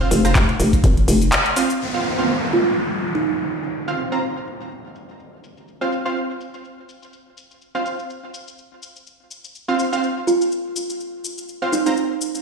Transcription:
0.01 0.17 C4 medium
0.01 0.17 F4 medium
0.01 0.17 C5 medium
0.01 0.17 F5 loud
0.11 0.34 F1 loud
0.11 open hi-hat loud
0.11 shaker medium
0.25 0.34 C4 medium
0.25 0.34 F4 medium
0.25 0.34 C5 medium
0.25 0.34 A#5 medium
0.25 cross-stick medium
0.25 closed hi-hat medium
0.25 shaker soft
0.35 0.58 F1 loud
0.35 kick loud
0.35 clap loud
0.35 closed hi-hat medium
0.35 shaker soft
0.49 closed hi-hat soft
0.60 0.82 F1 loud
0.60 open hi-hat loud
0.60 shaker medium
0.73 kick medium
0.73 closed hi-hat medium
0.73 shaker soft
0.84 1.06 G#1 medium
0.84 kick loud
0.84 closed hi-hat medium
0.84 shaker soft
0.97 closed hi-hat soft
1.08 1.31 F1 medium
1.08 open hi-hat loud
1.08 shaker medium
1.22 closed hi-hat soft
1.22 shaker soft
1.32 clap loud
1.32 closed hi-hat medium
1.32 shaker soft
1.46 closed hi-hat soft
1.56 1.68 C4 medium
1.56 1.68 F4 medium
1.56 1.68 C5 medium
1.56 1.68 F5 loud
1.56 open hi-hat loud
1.56 shaker medium
1.70 closed hi-hat soft
1.70 shaker soft
1.81 downlifter medium
1.94 2.10 C4 medium
1.94 2.10 F4 medium
1.94 2.10 C5 medium
1.94 2.10 F5 loud
2.18 2.28 C4 medium
2.18 2.28 F4 medium
2.18 2.28 C5 medium
2.18 2.28 F5 medium
2.53 3.02 F4 medium
3.02 shaker medium
3.15 3.63 D#4 medium
3.50 shaker medium
3.64 shaker soft
3.74 shaker soft
3.88 4.04 C4 medium
3.88 4.04 F4 medium
3.88 4.04 C5 medium
3.88 4.04 F5 medium
3.99 shaker medium
4.12 4.21 C4 medium
4.12 4.21 F4 medium
4.12 4.21 C5 medium
4.12 4.21 A#5 medium
4.23 shaker soft
4.47 shaker medium
4.61 shaker soft
4.71 shaker soft
4.95 shaker medium
5.09 shaker soft
5.20 shaker soft
5.44 shaker medium
5.57 shaker soft
5.68 shaker soft
5.81 5.97 C4 medium
5.81 5.97 F4 medium
5.81 5.97 C5 medium
5.81 5.97 F5 loud
5.92 shaker medium
6.05 6.15 C4 medium
6.05 6.15 F4 medium
6.05 6.15 C5 medium
6.05 6.15 F5 medium
6.05 shaker soft
6.16 shaker soft
6.41 shaker medium
6.54 shaker soft
6.65 shaker soft
6.89 shaker medium
7.02 shaker soft
7.13 shaker soft
7.37 shaker medium
7.51 shaker soft
7.61 shaker soft
7.75 7.91 C4 medium
7.75 7.91 F4 medium
7.75 7.91 C5 medium
7.75 7.91 F5 loud
7.86 shaker medium
7.99 shaker soft
8.10 shaker soft
8.34 shaker medium
8.48 shaker soft
8.58 shaker soft
8.82 shaker medium
8.96 shaker soft
9.07 shaker soft
9.31 shaker medium
9.44 shaker soft
9.55 shaker soft
9.68 9.84 C4 medium
9.68 9.84 F4 medium
9.68 9.84 C5 medium
9.68 9.84 F5 loud
9.79 shaker medium
9.93 10.02 C4 medium
9.93 10.02 F4 medium
9.93 10.02 C5 medium
9.93 10.02 F5 medium
9.93 shaker soft
10.03 shaker soft
10.27 10.76 F4 medium
10.27 shaker medium
10.41 shaker soft
10.52 shaker soft
10.76 shaker medium
10.90 shaker soft
11.00 shaker soft
11.24 shaker medium
11.38 shaker soft
11.49 shaker soft
11.62 11.78 C4 medium
11.62 11.78 F4 medium
11.62 11.78 C5 medium
11.62 11.78 F5 medium
11.73 11.81 D#4 medium
11.73 shaker medium
11.86 11.95 C4 medium
11.86 11.93 D#4 medium
11.86 11.95 F4 medium
11.86 11.95 C5 medium
11.86 11.95 A#5 medium
11.86 shaker soft
11.97 shaker soft
12.21 shaker medium
12.35 shaker soft

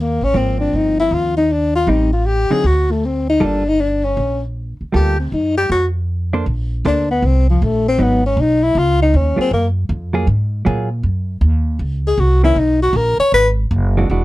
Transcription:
0.00 0.16 D#2 medium
0.00 0.25 A#3 medium
0.21 0.33 A1 medium
0.21 0.39 C#4 loud
0.34 0.69 G#1 medium
0.34 1.41 F3 soft
0.34 1.41 A#3 soft
0.34 1.42 C4 medium
0.34 0.59 C4 medium
0.60 0.78 D4 medium
0.73 1.08 G1 medium
0.73 0.99 D#4 medium
1.00 1.15 E4 medium
1.11 1.83 D#2 medium
1.11 1.37 F4 medium
1.37 1.53 D#4 medium
1.52 1.75 D4 medium
1.75 1.91 F4 loud
1.87 2.46 A1 medium
1.87 2.10 G3 medium
1.87 2.10 C4 medium
1.87 2.10 D#4 medium
1.87 2.12 D#4 medium
2.13 2.28 F4 medium
2.26 2.53 G4 medium
2.50 2.62 D3 medium
2.50 2.63 F#3 medium
2.50 2.63 C4 medium
2.50 2.63 D#4 medium
2.50 2.68 G#4 loud
2.50 muted upright bass stroke soft
2.64 3.36 D2 medium
2.64 2.93 F#4 medium
2.91 3.07 A3 medium
3.05 3.28 C4 medium
3.30 3.46 D#4 medium
3.40 4.13 G1 medium
3.40 3.62 G3 medium
3.40 3.63 A#3 medium
3.40 3.63 F4 medium
3.40 3.63 A4 medium
3.45 3.70 D4 medium
3.69 3.82 D#4 medium
3.80 4.06 D4 medium
4.05 4.42 C#4 medium
4.17 4.76 A#1 medium
4.81 muted upright bass stroke soft
4.92 5.29 D2 medium
4.92 5.15 G3 medium
4.92 5.16 A#3 soft
4.92 5.16 F4 medium
4.92 5.18 G4 medium
4.92 5.16 A4 medium
5.20 5.35 C4 soft
5.32 5.67 F#2 medium
5.32 5.57 D#4 medium
5.57 5.69 G4 medium
5.70 6.42 F2 medium
5.70 5.86 F#4 medium
6.33 6.45 A#3 medium
6.33 6.45 D4 medium
6.33 6.45 A4 medium
6.33 6.45 C5 medium
6.46 6.83 A#1 medium
6.85 7.21 D2 medium
6.85 7.07 A#3 medium
6.85 7.07 D4 medium
6.85 7.08 D4 medium
6.85 7.07 A4 medium
6.85 7.07 C5 medium
7.11 7.27 B3 medium
7.22 7.59 C2 medium
7.22 7.49 C4 medium
7.50 7.65 F3 medium
7.62 7.98 A#1 medium
7.62 7.87 A3 medium
7.89 8.04 C4 loud
7.99 8.36 G#1 medium
7.99 8.21 F#3 medium
7.99 8.21 B3 medium
7.99 8.25 B3 medium
7.99 8.21 D#4 medium
8.26 8.42 C#4 medium
8.37 8.74 B1 medium
8.41 8.65 D#4 medium
8.63 8.80 E4 medium
8.75 9.12 C#2 medium
8.75 9.01 F4 medium
9.02 9.18 D#4 medium
9.14 9.36 D#2 medium
9.14 9.40 C#4 medium
9.36 9.49 F#3 soft
9.36 9.50 A#3 medium
9.36 9.50 F4 medium
9.36 9.50 G#4 medium
9.36 muted upright bass stroke soft
9.41 9.52 C4 medium
9.51 9.88 F#2 medium
9.51 9.68 A#3 medium
9.89 10.26 F2 medium
10.13 10.26 F#3 medium
10.13 10.26 A#3 medium
10.13 10.26 F4 medium
10.13 10.26 G#4 medium
10.27 10.64 G#2 medium
10.65 11.03 A#2 loud
10.65 10.88 F#3 medium
10.65 10.88 A#3 medium
10.65 10.88 F4 medium
10.65 10.88 G#4 medium
11.03 11.41 F#2 medium
11.41 11.78 D#2 medium
11.79 12.17 C#2 medium
12.07 12.21 G#4 medium
12.18 12.55 C2 medium
12.18 12.44 F#4 medium
12.44 12.55 D#3 medium
12.44 12.55 A#3 medium
12.44 12.56 C#4 medium
12.44 12.60 E4 medium
12.56 12.92 B1 medium
12.56 12.82 D#4 medium
12.82 12.98 F#4 medium
12.93 13.17 A#1 medium
12.93 13.19 A#4 medium
13.18 13.32 C#5 loud
13.18 muted upright bass stroke soft
13.32 13.69 G#1 medium
13.32 13.48 B4 loud
13.71 14.08 F#1 medium
13.97 14.08 E3 medium
13.97 14.09 G#3 medium
13.97 14.09 D4 medium
13.97 14.09 F#4 medium
14.09 14.24 E1 medium
14.09 14.24 E3 medium
14.09 14.24 G#3 medium
14.09 14.24 D4 medium
14.09 14.24 F#4 medium

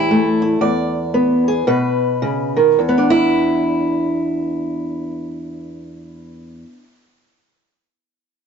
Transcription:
0.00 0.60 E2 medium
0.00 0.41 E4 loud
0.00 0.28 G4 medium
0.11 0.59 A3 medium
0.42 0.58 E4 soft
0.61 1.67 E2 medium
0.61 1.64 D5 medium
1.14 1.65 B3 medium
1.48 1.65 G#4 medium
1.67 2.75 B2 medium
1.67 2.76 B4 medium
2.22 2.57 C#3 medium
2.56 2.78 D#3 medium
2.79 6.64 E2 medium
2.89 6.74 B3 medium
2.98 6.83 D4 medium
3.10 6.92 E4 medium

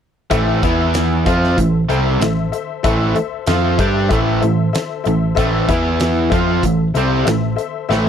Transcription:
0.30 0.61 A1 medium
0.30 0.62 A2 loud
0.30 0.62 E3 medium
0.30 0.62 A3 loud
0.30 0.56 A4 loud
0.30 0.56 C5 medium
0.30 0.56 E5 loud
0.30 kick loud
0.30 closed hi-hat medium
0.63 1.22 E2 medium
0.63 1.26 E3 medium
0.63 1.26 B3 medium
0.63 1.14 E4 medium
0.63 1.26 E4 medium
0.63 1.14 B4 medium
0.63 1.14 E5 loud
0.63 kick loud
0.63 closed hi-hat medium
0.94 snare loud
0.94 closed hi-hat loud
1.26 1.56 F2 loud
1.26 1.57 F3 medium
1.26 1.57 C4 loud
1.26 1.58 F4 loud
1.26 1.77 A4 medium
1.26 1.77 C5 medium
1.26 1.77 E5 medium
1.26 kick loud
1.26 closed hi-hat medium
1.44 snare soft
1.58 1.88 A1 medium
1.58 1.83 A2 medium
1.58 1.83 E3 medium
1.58 kick medium
1.58 closed hi-hat medium
1.88 2.19 C2 medium
1.88 2.20 C3 medium
1.88 2.20 G3 loud
1.88 2.21 C4 medium
1.88 2.14 A4 medium
1.88 2.15 C5 medium
1.88 2.15 E5 medium
1.88 closed hi-hat medium
2.19 2.50 A1 medium
2.19 2.47 A2 medium
2.19 2.47 E3 medium
2.19 2.46 A4 medium
2.19 2.47 C5 medium
2.19 2.47 E5 medium
2.19 snare loud
2.19 closed hi-hat loud
2.52 2.78 A4 medium
2.52 2.78 C5 medium
2.52 2.78 E5 medium
2.52 closed hi-hat medium
2.83 3.14 A1 loud
2.83 3.14 A2 medium
2.83 3.16 E3 medium
2.83 3.16 A3 loud
2.83 3.09 A4 loud
2.83 3.09 C5 medium
2.83 3.10 E5 loud
2.83 kick loud
2.83 closed hi-hat medium
3.15 3.41 A4 medium
3.15 3.41 C5 medium
3.15 3.41 E5 medium
3.15 muted picked electric bass stroke soft
3.15 muted overdriven electric guitar stroke medium
3.15 closed hi-hat medium
3.46 3.77 F2 medium
3.46 3.78 F3 medium
3.46 3.79 C4 medium
3.46 3.79 F4 medium
3.46 3.72 A4 medium
3.46 3.72 C5 medium
3.46 3.73 E5 medium
3.46 snare loud
3.46 closed hi-hat medium
3.77 4.09 G2 medium
3.77 4.10 G3 medium
3.77 4.10 D4 medium
3.77 4.11 G4 loud
3.77 4.04 A4 medium
3.77 4.04 C5 medium
3.77 4.04 E5 medium
3.77 kick loud
3.77 closed hi-hat medium
4.09 4.41 A1 medium
4.09 4.42 A2 loud
4.09 4.42 E3 loud
4.09 4.42 A3 loud
4.09 4.35 A4 loud
4.09 4.35 C5 medium
4.09 4.35 E5 loud
4.09 kick loud
4.09 closed hi-hat medium
4.41 4.72 A1 medium
4.41 4.69 A2 medium
4.41 4.69 E3 medium
4.41 4.67 A4 medium
4.41 4.67 C5 medium
4.41 4.67 E5 medium
4.41 closed hi-hat medium
4.73 4.99 A4 medium
4.73 4.99 C5 medium
4.73 4.99 E5 medium
4.73 snare loud
4.73 closed hi-hat medium
5.04 5.35 A1 medium
5.04 5.32 A2 medium
5.04 5.32 E3 medium
5.04 5.30 A4 medium
5.04 5.30 C5 medium
5.04 5.30 E5 medium
5.04 closed hi-hat medium
5.35 5.67 A1 loud
5.35 5.68 A2 medium
5.35 5.68 E3 loud
5.35 5.69 A3 loud
5.35 5.62 A4 loud
5.35 5.61 C5 loud
5.35 5.62 E5 loud
5.35 kick loud
5.35 closed hi-hat medium
5.68 6.28 E2 medium
5.68 6.31 E3 medium
5.68 6.32 B3 loud
5.68 6.19 E4 medium
5.68 6.32 E4 loud
5.68 6.19 B4 medium
5.68 6.19 E5 loud
5.68 kick loud
5.68 closed hi-hat medium
6.00 snare loud
6.00 closed hi-hat medium
6.29 6.61 F2 loud
6.29 6.63 F3 medium
6.29 6.63 C4 medium
6.29 6.81 A4 medium
6.29 6.82 C5 medium
6.29 6.82 E5 loud
6.29 kick loud
6.29 closed hi-hat medium
6.33 6.63 F4 loud
6.63 6.93 A1 medium
6.63 6.89 A2 medium
6.63 6.89 E3 medium
6.63 kick medium
6.63 closed hi-hat medium
6.94 7.24 C2 medium
6.94 7.27 C3 medium
6.94 7.27 G3 medium
6.94 7.27 C4 medium
6.94 7.20 A4 medium
6.94 7.20 C5 medium
6.94 7.20 E5 medium
6.94 closed hi-hat medium
7.23 7.56 A1 medium
7.23 7.51 A4 medium
7.23 7.51 C5 medium
7.23 7.51 E5 medium
7.23 closed hi-hat loud
7.28 7.53 A2 medium
7.28 7.53 E3 medium
7.28 snare loud
7.56 7.82 A4 medium
7.56 7.83 C5 medium
7.56 7.83 E5 medium
7.56 closed hi-hat medium
7.89 8.09 A1 medium
7.89 8.09 A2 medium
7.89 8.09 E3 medium
7.89 8.09 A3 loud
7.89 8.09 A4 loud
7.89 8.09 C5 loud
7.89 8.09 E5 loud
7.89 snare medium

